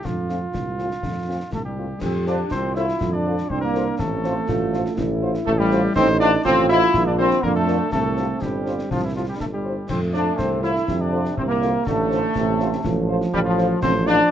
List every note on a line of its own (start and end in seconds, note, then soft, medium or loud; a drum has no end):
0.05 0.46 F2 medium
0.05 1.73 F4 medium
0.05 1.52 F4 medium
0.05 concert bass drum medium
0.05 snare medium
0.29 0.39 A3 soft
0.29 0.39 C4 soft
0.29 0.38 F4 soft
0.29 snare soft
0.54 0.95 C2 medium
0.54 concert bass drum medium
0.54 snare medium
0.79 0.88 A3 soft
0.79 0.88 C4 soft
0.79 0.88 F4 soft
0.79 snare soft
0.91 snare soft
1.03 1.41 F2 medium
1.03 concert bass drum medium
1.03 snare medium
1.29 1.38 A3 soft
1.29 1.37 C4 soft
1.29 1.38 F4 soft
1.52 1.94 C2 medium
1.52 1.58 A3 medium
1.52 1.64 A4 medium
1.52 concert bass drum medium
1.52 snare medium
1.64 1.99 G3 medium
1.64 2.03 G4 medium
1.78 1.87 A3 soft
1.78 1.87 C4 soft
1.78 1.87 F4 soft
2.01 2.43 F2 medium
2.01 2.13 C4 medium
2.01 2.53 G4 medium
2.01 2.26 C5 medium
2.01 concert bass drum medium
2.01 snare medium
2.01 crash medium
2.27 2.50 D4 medium
2.27 2.36 F4 medium
2.27 2.36 A4 medium
2.27 2.36 C5 medium
2.27 2.38 D5 medium
2.27 snare medium
2.51 2.93 C2 medium
2.51 2.74 C4 medium
2.51 3.50 F4 medium
2.51 2.76 C5 medium
2.51 concert bass drum medium
2.51 snare medium
2.75 3.10 E4 medium
2.75 2.85 F4 medium
2.75 2.85 A4 medium
2.75 2.85 C5 medium
2.75 3.12 E5 medium
2.75 snare soft
2.88 snare medium
3.01 3.42 F2 medium
3.01 concert bass drum medium
3.01 snare medium
3.13 3.50 D4 medium
3.13 3.52 D5 medium
3.26 3.35 F4 medium
3.26 3.35 A4 medium
3.26 3.35 C5 medium
3.38 snare soft
3.50 3.91 C2 medium
3.50 3.62 C4 medium
3.50 4.01 D4 medium
3.50 3.60 C5 medium
3.50 concert bass drum medium
3.61 3.97 A#3 medium
3.61 3.96 A#4 medium
3.75 3.84 F4 medium
3.75 3.84 A4 medium
3.75 3.84 C5 medium
3.75 snare soft
3.98 4.40 A1 medium
3.98 5.22 A3 medium
3.98 4.47 C4 medium
3.98 5.18 A4 medium
3.98 concert bass drum medium
3.98 snare medium
4.24 4.33 F4 medium
4.24 4.33 C5 medium
4.24 snare medium
4.48 4.89 A1 medium
4.48 4.94 F4 medium
4.48 concert bass drum medium
4.48 snare medium
4.73 4.82 F4 medium
4.73 4.82 C5 medium
4.73 snare medium
4.86 snare medium
4.97 5.38 A1 medium
4.97 5.92 E4 loud
4.97 concert bass drum medium
4.97 snare medium
5.22 5.31 F4 medium
5.22 5.31 C5 medium
5.35 snare medium
5.46 5.88 A1 medium
5.46 5.51 A3 loud
5.46 5.60 A4 medium
5.46 concert bass drum medium
5.58 5.93 G3 loud
5.58 5.95 G4 loud
5.71 5.81 F4 medium
5.71 5.81 C5 medium
5.71 snare medium
5.96 6.37 A1 loud
5.96 6.07 C4 loud
5.96 6.42 D#4 medium
5.96 6.19 C5 loud
5.96 concert bass drum medium
5.96 snare medium
5.96 crash soft
6.20 6.31 D4 loud
6.20 6.29 F4 medium
6.20 6.29 C5 medium
6.20 6.43 D5 loud
6.20 6.29 D#5 medium
6.20 snare medium
6.45 6.86 A1 medium
6.45 6.68 C4 loud
6.45 7.39 F4 loud
6.45 6.56 C5 loud
6.45 concert bass drum medium
6.45 snare medium
6.69 7.04 E4 loud
6.69 6.79 F4 medium
6.69 6.78 C5 medium
6.69 6.78 D#5 medium
6.69 7.04 E5 loud
6.69 snare medium
6.82 snare medium
6.94 7.35 A#1 medium
6.94 concert bass drum medium
6.94 snare medium
7.07 7.19 D4 loud
7.07 7.12 D5 medium
7.18 7.41 C4 loud
7.18 7.28 F4 medium
7.18 7.28 A#4 medium
7.18 7.30 C5 medium
7.18 7.28 D5 medium
7.31 snare medium
7.42 7.80 F2 medium
7.42 7.55 A#3 loud
7.42 7.89 D4 medium
7.42 7.49 A#4 medium
7.42 concert bass drum medium
7.55 7.91 A3 loud
7.55 7.90 A4 medium
7.68 7.77 F4 medium
7.68 7.77 A#4 medium
7.68 7.77 D5 medium
7.68 snare medium
7.92 8.33 C2 medium
7.92 8.38 A3 medium
7.92 9.60 C4 medium
7.92 8.43 A4 medium
7.92 concert bass drum medium
7.92 snare medium
8.17 8.26 F4 medium
8.17 8.26 G4 medium
8.17 8.26 C5 medium
8.17 snare medium
8.42 8.83 G1 medium
8.42 8.91 G3 medium
8.42 8.91 G4 medium
8.42 concert bass drum medium
8.42 snare medium
8.66 8.75 F4 medium
8.66 8.75 G4 medium
8.66 8.75 C5 medium
8.66 snare medium
8.79 snare medium
8.90 9.32 C2 medium
8.90 9.02 F3 medium
8.90 9.03 F4 medium
8.90 concert bass drum medium
8.90 snare medium
9.04 9.10 E3 medium
9.04 9.15 E4 medium
9.15 9.21 F3 medium
9.15 9.25 E4 soft
9.15 9.27 F4 medium
9.15 9.25 G4 medium
9.15 9.25 C5 soft
9.28 9.40 G3 medium
9.28 9.34 G4 medium
9.39 9.81 G1 medium
9.39 9.45 A3 medium
9.39 9.46 A4 medium
9.39 concert bass drum medium
9.39 snare medium
9.52 9.87 G3 medium
9.52 9.87 G4 medium
9.64 9.74 E4 medium
9.64 9.74 G4 medium
9.64 9.73 C5 medium
9.88 10.30 F2 medium
9.88 10.84 A3 medium
9.88 10.00 C4 medium
9.88 10.01 C5 medium
9.88 concert bass drum medium
9.88 snare medium
9.88 crash medium
10.13 10.37 D4 medium
10.13 10.23 F4 medium
10.13 10.23 A4 medium
10.13 10.23 C5 medium
10.13 10.36 D5 medium
10.13 snare medium
10.37 10.80 C2 medium
10.37 10.62 C4 loud
10.37 10.50 C5 medium
10.37 concert bass drum medium
10.37 snare medium
10.62 10.97 E4 loud
10.62 10.72 F4 medium
10.62 10.72 A4 medium
10.62 10.72 C5 medium
10.62 11.03 E5 medium
10.62 snare soft
10.76 snare medium
10.88 11.29 F2 medium
10.88 11.82 C3 medium
10.88 concert bass drum medium
10.88 snare medium
10.99 11.36 D4 medium
10.99 11.37 D5 medium
11.13 11.22 F4 medium
11.13 11.21 A4 medium
11.13 11.22 C5 medium
11.25 snare medium
11.36 11.78 C2 medium
11.36 11.42 C4 loud
11.36 11.43 C5 medium
11.36 concert bass drum medium
11.47 11.82 A#3 medium
11.51 11.85 A#4 medium
11.62 11.71 F4 medium
11.62 11.71 A4 medium
11.62 11.71 C5 medium
11.62 snare medium
11.85 12.27 A1 medium
11.85 12.32 D3 medium
11.85 13.08 A3 loud
11.85 13.05 A4 medium
11.85 concert bass drum medium
11.85 snare medium
12.11 12.19 F4 medium
12.11 12.20 A4 medium
12.11 12.19 C5 medium
12.11 snare medium
12.35 12.77 A1 medium
12.35 12.81 C3 medium
12.35 concert bass drum medium
12.35 snare medium
12.60 12.69 F4 medium
12.60 12.69 A4 medium
12.60 12.69 C5 medium
12.60 snare medium
12.73 snare medium
12.84 13.26 A1 medium
12.84 14.31 F3 loud
12.84 concert bass drum medium
12.84 snare medium
13.09 13.18 F4 medium
13.09 13.18 A4 medium
13.09 13.18 C5 medium
13.21 snare medium
13.33 13.75 A1 medium
13.33 13.39 G3 loud
13.33 13.39 G4 loud
13.33 concert bass drum medium
13.45 13.80 F3 medium
13.45 13.80 F4 medium
13.58 13.67 F4 medium
13.58 13.67 A4 medium
13.58 13.67 C5 medium
13.58 snare medium
13.82 14.20 A1 medium
13.82 13.93 C4 loud
13.82 14.08 C5 loud
13.82 concert bass drum medium
13.82 snare medium
13.82 crash soft
14.06 14.29 D4 loud
14.06 14.16 F4 medium
14.06 14.30 D5 loud
14.06 14.16 D#5 medium
14.06 snare medium